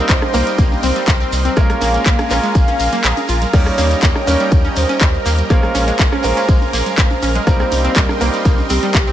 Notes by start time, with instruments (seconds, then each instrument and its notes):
Already playing: grand piano G3 A#3 C4 D#4 A#4, supersaw synth A#4 D#5 G5 C6
0.09 analog synth bass C2, synth pluck G3, soft synth lead C5, kick, clap, closed hi-hat, shekere
0.22 cross-stick, high conga, shekere
0.34 analog synth bass C2, grand piano G3 A#3 C4 D#4 A#4, synth pluck A#3, open hi-hat, shekere
0.47 closed hi-hat, shekere
0.58 analog synth bass C2, synth pluck A#3, kick, closed hi-hat, shekere
0.71 high conga, shekere
0.83 analog synth bass C2, synth pluck C4, soft synth lead C5, open hi-hat, low conga, shekere
0.95 synth pluck G3, closed hi-hat, shekere
1.07 analog synth bass C2, kick, clap, closed hi-hat, shekere
1.20 synth pluck C4, shekere
1.32 analog synth bass C2, open hi-hat, shekere
1.45 synth pluck C4, closed hi-hat, low conga, shekere
1.56 analog synth bass A#1, synth pluck G#3, grand piano G#3 A#3 C#4 F4 A#4, supersaw synth A#4 F5 G#5 A#5, soft synth lead F5, kick, cross-stick, closed hi-hat, shekere
1.70 cross-stick, closed hi-hat, low conga, shekere
1.81 analog synth bass A#1, synth pluck A#3, open hi-hat, high conga, shekere
1.94 closed hi-hat, shekere
2.06 analog synth bass A#1, synth pluck A#3, kick, clap, closed hi-hat
2.19 cross-stick, closed hi-hat, high conga, shekere
2.30 analog synth bass A#1, grand piano G#3 A#3 C#4 F4 A#4, synth pluck C#4, clap, open hi-hat, shekere
2.43 synth pluck G#3, closed hi-hat, shekere
2.55 analog synth bass A#1, kick, closed hi-hat, shekere
2.68 synth pluck C#4, closed hi-hat, high conga, shekere
2.79 analog synth bass A#1, open hi-hat, shekere
2.92 synth pluck A#3, closed hi-hat, low conga, shekere
3.04 analog synth bass A#1, synth pluck G#4, clap, closed hi-hat, shekere
3.17 closed hi-hat, high conga, shekere
3.28 analog synth bass A#1, synth pluck F4, open hi-hat, shekere
3.42 closed hi-hat, low conga, shekere
3.53 analog synth bass D#2, synth pluck G3, grand piano G3 A#3 C#4 D#4 A#4, soft synth lead C#5, supersaw synth D#5 G5, kick, cross-stick, closed hi-hat, crash, shekere
3.66 cross-stick, shekere
3.78 analog synth bass D#2, synth pluck A#3, open hi-hat, high conga, shekere
3.91 closed hi-hat, shekere
4.03 analog synth bass D#2, synth pluck A#3, soft synth lead C#5, kick, clap, closed hi-hat, shekere
4.16 cross-stick, high conga, shekere
4.27 analog synth bass D#2, grand piano G3 A#3 C#4 D#4 A#4, synth pluck C#4, open hi-hat, shekere
4.40 synth pluck G3, closed hi-hat, shekere
4.51 analog synth bass D#2, kick, closed hi-hat, shekere
4.65 synth pluck C#4, high conga, shekere
4.76 analog synth bass D#2, soft synth lead C5, open hi-hat, low conga, shekere
4.89 synth pluck C#4, closed hi-hat, shekere
5.01 analog synth bass D#2, synth pluck G3, kick, clap, closed hi-hat, shekere
5.14 shekere
5.25 analog synth bass D#2, synth pluck A#3, open hi-hat, shekere
5.38 closed hi-hat, low conga, shekere
5.50 analog synth bass A#1, grand piano G#3 A#3 C#4 F4 A#4, synth pluck A#3, soft synth lead C5, supersaw synth F5 G#5 A#5, kick, cross-stick, closed hi-hat, shekere
5.63 cross-stick, low conga, shekere
5.75 analog synth bass A#1, synth pluck C#4, open hi-hat, high conga, shekere
5.87 synth pluck G#3, closed hi-hat, shekere
5.99 analog synth bass A#1, kick, clap, closed hi-hat, shekere
6.12 synth pluck C#4, cross-stick, high conga, shekere
6.23 analog synth bass A#1, grand piano G#3 A#3 C#4 F4 A#4, open hi-hat, shekere
6.37 synth pluck C#4, closed hi-hat, shekere
6.49 analog synth bass A#1, synth pluck G#3, kick, closed hi-hat, shekere
6.62 high conga, shekere
6.73 analog synth bass A#1, synth pluck A#3, open hi-hat, shekere
6.86 closed hi-hat, low conga, shekere
6.98 analog synth bass A#1, synth pluck A#3, kick, clap, closed hi-hat, shekere
7.10 high conga, shekere
7.22 analog synth bass A#1, synth pluck C#4, open hi-hat, shekere
7.35 synth pluck G#3, closed hi-hat, low conga, shekere
7.47 analog synth bass C2, grand piano G3 A#3 C4 D#4 A#4, soft synth lead C5, supersaw synth D#5 G5 C6, kick, cross-stick, closed hi-hat, shekere
7.60 synth pluck C4, cross-stick, shekere
7.72 analog synth bass C2, open hi-hat, high conga, shekere
7.84 synth pluck C4, closed hi-hat, shekere
7.96 analog synth bass C2, synth pluck G3, soft synth lead A#4, kick, clap, closed hi-hat, shekere
8.09 cross-stick, high conga, shekere
8.20 analog synth bass C2, grand piano G3 A#3 C4 D#4 A#4, synth pluck A#3, open hi-hat, shekere
8.34 closed hi-hat, shekere
8.45 analog synth bass C2, synth pluck A#3, kick, closed hi-hat, shekere
8.58 high conga, shekere
8.70 analog synth bass C2, synth pluck C4, soft synth lead G4, open hi-hat, low conga, shekere
8.83 synth pluck G3, closed hi-hat, shekere
8.94 analog synth bass C2, kick, clap, closed hi-hat, shekere
9.07 synth pluck C4, shekere